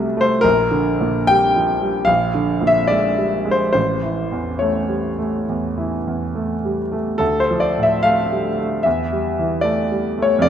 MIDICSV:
0, 0, Header, 1, 2, 480
1, 0, Start_track
1, 0, Tempo, 817439
1, 260, Time_signature, 4, 2, 24, 8
1, 1704, Tempo, 863309
1, 3624, Tempo, 842697
1, 4584, Tempo, 805369
1, 6044, End_track
2, 0, Start_track
2, 0, Title_t, "Grand piano"
2, 0, Program_c, 0, 0
2, 0, Control_c, 0, 64, 127
2, 0, Note_on_c, 0, 36, 61
2, 0, Note_on_c, 0, 48, 54
2, 0, Note_on_c, 0, 54, 54
2, 0, Note_on_c, 0, 55, 46
2, 0, Note_on_c, 0, 57, 55
2, 0, Note_on_c, 0, 69, 86
2, 98, Note_off_c, 0, 55, 0
2, 100, Note_off_c, 0, 57, 0
2, 100, Note_on_c, 0, 57, 55
2, 122, Note_on_c, 0, 72, 89
2, 135, Note_off_c, 0, 69, 0
2, 235, Note_off_c, 0, 36, 0
2, 241, Note_on_c, 0, 70, 99
2, 250, Note_off_c, 0, 72, 0
2, 258, Note_on_c, 0, 34, 69
2, 259, Note_off_c, 0, 57, 0
2, 272, Control_c, 0, 64, 0
2, 277, Note_off_c, 0, 54, 0
2, 278, Note_off_c, 0, 48, 0
2, 374, Control_c, 0, 64, 127
2, 418, Note_on_c, 0, 50, 54
2, 593, Note_on_c, 0, 46, 51
2, 689, Note_off_c, 0, 50, 0
2, 748, Note_off_c, 0, 70, 0
2, 748, Note_on_c, 0, 79, 106
2, 764, Note_on_c, 0, 55, 57
2, 854, Note_off_c, 0, 46, 0
2, 916, Note_on_c, 0, 53, 46
2, 1013, Note_off_c, 0, 55, 0
2, 1066, Note_on_c, 0, 55, 51
2, 1072, Note_off_c, 0, 53, 0
2, 1202, Note_on_c, 0, 77, 94
2, 1203, Note_off_c, 0, 34, 0
2, 1215, Note_on_c, 0, 34, 62
2, 1222, Note_off_c, 0, 79, 0
2, 1224, Note_off_c, 0, 55, 0
2, 1236, Control_c, 0, 64, 0
2, 1343, Control_c, 0, 64, 127
2, 1377, Note_on_c, 0, 50, 48
2, 1534, Note_on_c, 0, 46, 49
2, 1569, Note_on_c, 0, 76, 97
2, 1571, Note_off_c, 0, 77, 0
2, 1636, Note_off_c, 0, 50, 0
2, 1688, Note_on_c, 0, 74, 82
2, 1697, Note_off_c, 0, 76, 0
2, 1703, Note_on_c, 0, 56, 51
2, 1793, Note_off_c, 0, 46, 0
2, 1857, Note_on_c, 0, 55, 43
2, 1954, Note_off_c, 0, 56, 0
2, 2009, Note_on_c, 0, 56, 52
2, 2016, Note_off_c, 0, 55, 0
2, 2044, Note_on_c, 0, 72, 80
2, 2050, Note_off_c, 0, 74, 0
2, 2151, Note_off_c, 0, 34, 0
2, 2154, Note_off_c, 0, 72, 0
2, 2162, Note_on_c, 0, 72, 86
2, 2172, Note_on_c, 0, 33, 59
2, 2175, Note_off_c, 0, 56, 0
2, 2189, Control_c, 0, 64, 0
2, 2300, Control_c, 0, 64, 127
2, 2332, Note_on_c, 0, 52, 43
2, 2492, Note_on_c, 0, 40, 46
2, 2589, Note_off_c, 0, 52, 0
2, 2642, Note_on_c, 0, 73, 68
2, 2648, Note_off_c, 0, 72, 0
2, 2655, Note_on_c, 0, 57, 46
2, 2749, Note_off_c, 0, 40, 0
2, 2807, Note_on_c, 0, 55, 40
2, 2913, Note_off_c, 0, 57, 0
2, 2974, Note_off_c, 0, 55, 0
2, 2974, Note_on_c, 0, 57, 43
2, 3116, Note_off_c, 0, 33, 0
2, 3144, Note_on_c, 0, 40, 46
2, 3237, Note_off_c, 0, 57, 0
2, 3302, Note_on_c, 0, 52, 44
2, 3401, Note_off_c, 0, 40, 0
2, 3467, Note_on_c, 0, 40, 43
2, 3559, Note_off_c, 0, 52, 0
2, 3622, Note_on_c, 0, 57, 47
2, 3723, Note_off_c, 0, 40, 0
2, 3791, Note_on_c, 0, 55, 37
2, 3861, Note_off_c, 0, 73, 0
2, 3884, Note_off_c, 0, 57, 0
2, 3946, Note_on_c, 0, 57, 44
2, 3952, Note_off_c, 0, 55, 0
2, 4093, Note_on_c, 0, 69, 86
2, 4103, Note_on_c, 0, 38, 58
2, 4107, Note_off_c, 0, 57, 0
2, 4119, Control_c, 0, 64, 0
2, 4219, Note_off_c, 0, 69, 0
2, 4219, Note_on_c, 0, 72, 76
2, 4227, Control_c, 0, 64, 127
2, 4278, Note_on_c, 0, 53, 49
2, 4333, Note_on_c, 0, 74, 79
2, 4342, Note_off_c, 0, 72, 0
2, 4434, Note_on_c, 0, 45, 44
2, 4458, Note_off_c, 0, 74, 0
2, 4463, Note_on_c, 0, 76, 79
2, 4526, Note_off_c, 0, 53, 0
2, 4576, Note_on_c, 0, 77, 88
2, 4583, Note_off_c, 0, 76, 0
2, 4586, Note_on_c, 0, 57, 53
2, 4687, Note_off_c, 0, 45, 0
2, 4750, Note_on_c, 0, 55, 42
2, 4847, Note_off_c, 0, 57, 0
2, 4911, Note_off_c, 0, 55, 0
2, 4914, Note_on_c, 0, 57, 48
2, 5043, Note_off_c, 0, 38, 0
2, 5055, Note_on_c, 0, 76, 78
2, 5067, Note_off_c, 0, 77, 0
2, 5069, Note_on_c, 0, 40, 59
2, 5072, Note_off_c, 0, 57, 0
2, 5079, Control_c, 0, 64, 0
2, 5164, Control_c, 0, 64, 127
2, 5230, Note_on_c, 0, 55, 48
2, 5389, Note_on_c, 0, 52, 45
2, 5484, Note_off_c, 0, 55, 0
2, 5521, Note_on_c, 0, 74, 85
2, 5534, Note_on_c, 0, 57, 47
2, 5539, Note_off_c, 0, 76, 0
2, 5642, Note_off_c, 0, 52, 0
2, 5697, Note_on_c, 0, 55, 44
2, 5793, Note_off_c, 0, 57, 0
2, 5859, Note_off_c, 0, 55, 0
2, 5861, Note_on_c, 0, 57, 52
2, 5886, Note_on_c, 0, 73, 84
2, 5890, Note_off_c, 0, 74, 0
2, 5982, Note_on_c, 0, 41, 65
2, 5999, Note_off_c, 0, 40, 0
2, 6002, Note_on_c, 0, 74, 96
2, 6006, Note_on_c, 0, 29, 62
2, 6015, Note_off_c, 0, 73, 0
2, 6022, Note_off_c, 0, 57, 0
2, 6035, Control_c, 0, 64, 0
2, 6044, Note_off_c, 0, 29, 0
2, 6044, Note_off_c, 0, 41, 0
2, 6044, Note_off_c, 0, 74, 0
2, 6044, End_track
0, 0, End_of_file